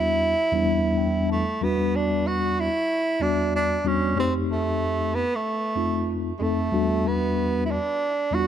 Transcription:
0.00 0.32 E2 medium
0.00 0.32 G3 medium
0.00 0.32 B3 medium
0.00 0.33 D4 medium
0.00 1.27 E4 loud
0.00 0.33 F#4 medium
0.52 1.43 E2 loud
0.52 1.43 G3 medium
0.52 1.43 B3 medium
0.52 1.43 D4 medium
0.52 1.44 E4 loud
0.98 1.28 G5 medium
1.29 1.65 A3 medium
1.29 1.59 A5 medium
1.61 2.67 E2 medium
1.61 2.67 G3 medium
1.61 2.67 B3 medium
1.61 1.97 B3 loud
1.61 2.68 D4 medium
1.61 2.68 F#4 medium
1.96 2.29 D4 medium
2.27 2.62 F#4 loud
2.60 3.24 E4 loud
3.20 3.76 E2 medium
3.20 3.76 G3 soft
3.20 3.76 B3 medium
3.20 3.76 D4 medium
3.20 3.54 D4 medium
3.20 3.77 F#4 medium
3.56 3.89 D4 loud
3.84 4.12 E2 medium
3.84 4.12 G3 medium
3.84 4.13 B3 medium
3.84 4.18 C#4 medium
3.84 4.13 D4 medium
3.84 4.13 F#4 medium
4.16 5.22 F2 medium
4.16 5.22 A3 medium
4.16 5.23 C4 medium
4.16 4.33 C4 medium
4.16 5.23 D#4 medium
4.16 5.23 G4 medium
4.52 5.16 A3 medium
5.15 5.37 B3 medium
5.36 6.16 A3 medium
5.75 6.31 F2 medium
5.75 6.31 A3 medium
5.75 6.31 C4 soft
5.75 6.32 D#4 medium
5.75 6.32 F4 medium
6.38 6.68 F2 medium
6.38 6.44 G#3 medium
6.38 6.68 A3 medium
6.38 6.68 C4 medium
6.38 6.69 D#4 medium
6.38 6.69 A4 medium
6.43 7.09 A3 loud
6.72 7.78 E2 medium
6.72 7.78 G3 medium
6.72 7.78 B3 medium
6.72 7.78 D4 medium
6.72 7.79 F#4 medium
7.07 7.65 B3 medium
7.65 7.73 E4 medium
7.71 8.36 D4 loud
8.31 8.47 E2 medium
8.31 8.47 G3 medium
8.31 8.47 B3 medium
8.31 8.47 D4 medium
8.31 8.41 F4 medium
8.31 8.47 F#4 medium
8.40 8.47 F#4 medium

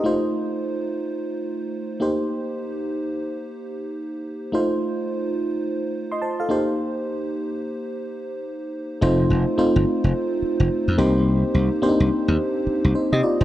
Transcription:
0.00 1.97 A3 medium
0.00 0.22 G4 medium
0.00 0.21 D#5 medium
0.04 1.97 D#4 medium
0.04 1.97 F4 medium
0.04 1.98 C5 medium
2.00 4.21 A#3 medium
2.00 4.21 D#4 medium
2.00 4.22 G4 medium
2.00 4.22 C5 medium
4.52 6.45 A3 medium
4.52 6.46 D#4 medium
4.52 6.46 F4 medium
4.52 5.92 C5 medium
6.12 6.22 D#5 soft
6.12 6.21 C6 medium
6.22 6.39 C5 medium
6.22 6.39 A5 medium
6.40 6.67 A4 medium
6.40 6.66 F5 medium
6.49 8.70 A#3 medium
6.49 8.70 D#4 medium
6.49 8.70 G4 medium
6.49 8.71 C5 medium
9.01 9.24 F1 loud
9.01 9.45 A3 medium
9.01 9.46 C4 medium
9.01 9.46 D#4 medium
9.01 9.46 F4 medium
9.01 9.46 C5 medium
9.30 9.44 F1 loud
9.58 10.39 A3 medium
9.58 10.40 C4 medium
9.58 10.40 D#4 medium
9.58 10.40 F4 medium
9.58 10.40 C5 medium
9.76 9.84 G1 medium
10.04 10.12 F1 medium
10.42 muted slap bass stroke soft
10.60 10.68 F1 medium
10.88 10.96 F2 loud
10.98 11.42 C2 loud
10.98 11.68 A#3 medium
10.98 11.69 C4 medium
10.98 11.69 D#4 medium
10.98 11.69 G4 medium
10.98 11.69 C5 medium
11.54 11.68 C2 medium
11.82 12.64 A#3 medium
11.82 12.64 C4 medium
11.82 11.91 D4 medium
11.82 12.64 G4 medium
11.82 12.64 C5 medium
11.89 12.67 D#4 medium
12.00 12.08 C2 medium
12.28 12.36 D#2 loud
12.67 muted slap bass stroke medium
12.85 12.92 C2 medium
12.95 13.12 D#4 medium
12.95 13.12 C5 medium
13.12 13.20 C3 loud
13.12 13.23 G4 medium
13.12 13.22 D#5 medium
13.23 13.40 F4 medium
13.23 13.40 D5 medium
13.41 13.44 E1 loud
13.41 13.44 C5 medium

